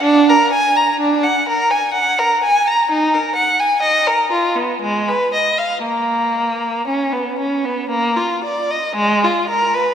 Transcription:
0, 0, Header, 1, 2, 480
1, 0, Start_track
1, 0, Tempo, 955414
1, 10, Time_signature, 3, 2, 24, 8
1, 2410, Tempo, 1036269
1, 4792, End_track
2, 0, Start_track
2, 0, Title_t, "Violin"
2, 0, Program_c, 0, 40
2, 15, Note_on_c, 0, 62, 82
2, 136, Note_off_c, 0, 62, 0
2, 149, Note_on_c, 0, 70, 70
2, 264, Note_off_c, 0, 70, 0
2, 265, Note_on_c, 0, 80, 69
2, 377, Note_off_c, 0, 80, 0
2, 384, Note_on_c, 0, 82, 62
2, 498, Note_off_c, 0, 82, 0
2, 503, Note_on_c, 0, 62, 67
2, 615, Note_off_c, 0, 62, 0
2, 623, Note_on_c, 0, 78, 67
2, 737, Note_off_c, 0, 78, 0
2, 746, Note_on_c, 0, 70, 63
2, 856, Note_off_c, 0, 70, 0
2, 858, Note_on_c, 0, 80, 65
2, 973, Note_on_c, 0, 78, 69
2, 974, Note_off_c, 0, 80, 0
2, 1088, Note_off_c, 0, 78, 0
2, 1100, Note_on_c, 0, 70, 63
2, 1214, Note_off_c, 0, 70, 0
2, 1223, Note_on_c, 0, 80, 66
2, 1332, Note_off_c, 0, 80, 0
2, 1344, Note_on_c, 0, 82, 61
2, 1454, Note_off_c, 0, 82, 0
2, 1461, Note_on_c, 0, 63, 71
2, 1569, Note_off_c, 0, 63, 0
2, 1579, Note_on_c, 0, 70, 63
2, 1686, Note_on_c, 0, 78, 61
2, 1690, Note_off_c, 0, 70, 0
2, 1801, Note_off_c, 0, 78, 0
2, 1807, Note_on_c, 0, 80, 61
2, 1918, Note_on_c, 0, 75, 69
2, 1924, Note_off_c, 0, 80, 0
2, 2038, Note_off_c, 0, 75, 0
2, 2047, Note_on_c, 0, 70, 58
2, 2166, Note_off_c, 0, 70, 0
2, 2169, Note_on_c, 0, 65, 51
2, 2287, Note_off_c, 0, 65, 0
2, 2290, Note_on_c, 0, 59, 49
2, 2413, Note_off_c, 0, 59, 0
2, 2418, Note_on_c, 0, 56, 64
2, 2529, Note_off_c, 0, 56, 0
2, 2543, Note_on_c, 0, 71, 59
2, 2653, Note_off_c, 0, 71, 0
2, 2659, Note_on_c, 0, 75, 50
2, 2769, Note_off_c, 0, 75, 0
2, 2774, Note_on_c, 0, 77, 50
2, 2888, Note_on_c, 0, 58, 57
2, 2889, Note_off_c, 0, 77, 0
2, 3361, Note_off_c, 0, 58, 0
2, 3372, Note_on_c, 0, 61, 50
2, 3489, Note_off_c, 0, 61, 0
2, 3490, Note_on_c, 0, 59, 46
2, 3609, Note_off_c, 0, 59, 0
2, 3610, Note_on_c, 0, 61, 44
2, 3725, Note_off_c, 0, 61, 0
2, 3732, Note_on_c, 0, 59, 46
2, 3844, Note_on_c, 0, 58, 59
2, 3847, Note_off_c, 0, 59, 0
2, 3961, Note_off_c, 0, 58, 0
2, 3972, Note_on_c, 0, 65, 50
2, 4092, Note_off_c, 0, 65, 0
2, 4097, Note_on_c, 0, 74, 50
2, 4217, Note_off_c, 0, 74, 0
2, 4222, Note_on_c, 0, 75, 49
2, 4335, Note_on_c, 0, 56, 78
2, 4345, Note_off_c, 0, 75, 0
2, 4459, Note_off_c, 0, 56, 0
2, 4470, Note_on_c, 0, 65, 63
2, 4585, Note_off_c, 0, 65, 0
2, 4586, Note_on_c, 0, 70, 64
2, 4696, Note_off_c, 0, 70, 0
2, 4701, Note_on_c, 0, 71, 65
2, 4792, Note_off_c, 0, 71, 0
2, 4792, End_track
0, 0, End_of_file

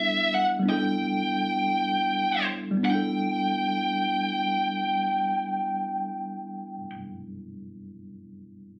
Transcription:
0, 0, Header, 1, 3, 480
1, 0, Start_track
1, 0, Key_signature, 1, "major"
1, 0, Tempo, 727273
1, 428, Time_signature, 6, 3, 24, 8
1, 5802, End_track
2, 0, Start_track
2, 0, Title_t, "Lead electric guitar"
2, 0, Program_c, 0, 29
2, 0, Note_on_c, 0, 76, 80
2, 224, Note_off_c, 0, 76, 0
2, 225, Note_on_c, 0, 78, 80
2, 285, Note_off_c, 0, 78, 0
2, 458, Note_on_c, 0, 79, 87
2, 1617, Note_off_c, 0, 79, 0
2, 1881, Note_on_c, 0, 79, 68
2, 4554, Note_off_c, 0, 79, 0
2, 5802, End_track
3, 0, Start_track
3, 0, Title_t, "Tine electric piano"
3, 0, Program_c, 1, 4
3, 0, Control_c, 1, 64, 127
3, 0, Note_on_c, 1, 55, 58
3, 0, Note_on_c, 1, 59, 52
3, 0, Note_on_c, 1, 62, 55
3, 0, Note_on_c, 1, 64, 55
3, 0, Note_on_c, 1, 69, 68
3, 386, Note_off_c, 1, 55, 0
3, 393, Note_on_c, 1, 55, 60
3, 396, Note_off_c, 1, 59, 0
3, 406, Note_off_c, 1, 62, 0
3, 413, Note_on_c, 1, 59, 53
3, 416, Note_off_c, 1, 64, 0
3, 426, Note_off_c, 1, 69, 0
3, 434, Note_on_c, 1, 62, 52
3, 454, Note_on_c, 1, 64, 54
3, 472, Note_on_c, 1, 69, 66
3, 1783, Note_off_c, 1, 55, 0
3, 1791, Note_on_c, 1, 55, 67
3, 1823, Note_off_c, 1, 59, 0
3, 1831, Note_on_c, 1, 59, 58
3, 1845, Note_off_c, 1, 62, 0
3, 1855, Note_off_c, 1, 64, 0
3, 1864, Note_off_c, 1, 69, 0
3, 1869, Note_on_c, 1, 62, 59
3, 1878, Control_c, 1, 64, 0
3, 1906, Note_on_c, 1, 64, 58
3, 1948, Note_on_c, 1, 69, 68
3, 1994, Control_c, 1, 64, 127
3, 4464, Note_off_c, 1, 55, 0
3, 4504, Note_off_c, 1, 59, 0
3, 4543, Note_off_c, 1, 62, 0
3, 4580, Note_off_c, 1, 64, 0
3, 4622, Note_off_c, 1, 69, 0
3, 5802, End_track
0, 0, End_of_file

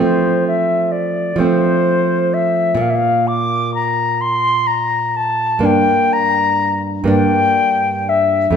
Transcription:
0, 0, Header, 1, 3, 480
1, 0, Start_track
1, 0, Tempo, 940439
1, 6, Time_signature, 6, 3, 24, 8
1, 2885, Tempo, 970874
1, 4324, End_track
2, 0, Start_track
2, 0, Title_t, "Flute"
2, 0, Program_c, 0, 73
2, 4, Note_on_c, 0, 72, 74
2, 228, Note_off_c, 0, 72, 0
2, 244, Note_on_c, 0, 76, 68
2, 468, Note_on_c, 0, 74, 64
2, 476, Note_off_c, 0, 76, 0
2, 708, Note_on_c, 0, 72, 81
2, 716, Note_off_c, 0, 74, 0
2, 1193, Note_on_c, 0, 76, 76
2, 1201, Note_off_c, 0, 72, 0
2, 1435, Note_on_c, 0, 77, 67
2, 1443, Note_off_c, 0, 76, 0
2, 1480, Note_on_c, 0, 76, 55
2, 1488, Note_off_c, 0, 77, 0
2, 1507, Note_on_c, 0, 77, 73
2, 1515, Note_off_c, 0, 76, 0
2, 1672, Note_on_c, 0, 86, 84
2, 1679, Note_off_c, 0, 77, 0
2, 1909, Note_off_c, 0, 86, 0
2, 1912, Note_on_c, 0, 82, 83
2, 2150, Note_on_c, 0, 84, 90
2, 2157, Note_off_c, 0, 82, 0
2, 2384, Note_on_c, 0, 82, 88
2, 2392, Note_off_c, 0, 84, 0
2, 2636, Note_on_c, 0, 81, 84
2, 2644, Note_off_c, 0, 82, 0
2, 2886, Note_on_c, 0, 79, 93
2, 2893, Note_off_c, 0, 81, 0
2, 3121, Note_on_c, 0, 82, 95
2, 3129, Note_off_c, 0, 79, 0
2, 3463, Note_off_c, 0, 82, 0
2, 3605, Note_on_c, 0, 79, 100
2, 4090, Note_on_c, 0, 76, 80
2, 4098, Note_off_c, 0, 79, 0
2, 4324, Note_off_c, 0, 76, 0
2, 4324, End_track
3, 0, Start_track
3, 0, Title_t, "Nylon-string guitar"
3, 0, Program_c, 1, 24
3, 0, Note_on_c, 1, 53, 56
3, 0, Note_on_c, 1, 57, 42
3, 0, Note_on_c, 1, 60, 47
3, 686, Note_off_c, 1, 53, 0
3, 691, Note_off_c, 1, 57, 0
3, 694, Note_on_c, 1, 53, 54
3, 695, Note_off_c, 1, 60, 0
3, 706, Note_on_c, 1, 57, 47
3, 715, Note_on_c, 1, 60, 49
3, 1401, Note_off_c, 1, 53, 0
3, 1401, Note_on_c, 1, 46, 59
3, 1407, Note_off_c, 1, 57, 0
3, 1412, Note_off_c, 1, 60, 0
3, 1414, Note_on_c, 1, 58, 51
3, 2846, Note_off_c, 1, 46, 0
3, 2852, Note_off_c, 1, 58, 0
3, 2853, Note_on_c, 1, 43, 60
3, 2861, Note_on_c, 1, 58, 52
3, 2873, Note_on_c, 1, 62, 52
3, 3563, Note_off_c, 1, 43, 0
3, 3569, Note_off_c, 1, 58, 0
3, 3569, Note_on_c, 1, 43, 62
3, 3575, Note_off_c, 1, 62, 0
3, 3578, Note_on_c, 1, 58, 52
3, 3587, Note_on_c, 1, 62, 54
3, 4290, Note_off_c, 1, 43, 0
3, 4294, Note_off_c, 1, 58, 0
3, 4295, Note_on_c, 1, 41, 59
3, 4299, Note_off_c, 1, 62, 0
3, 4304, Note_on_c, 1, 57, 53
3, 4324, Note_off_c, 1, 41, 0
3, 4324, Note_off_c, 1, 57, 0
3, 4324, End_track
0, 0, End_of_file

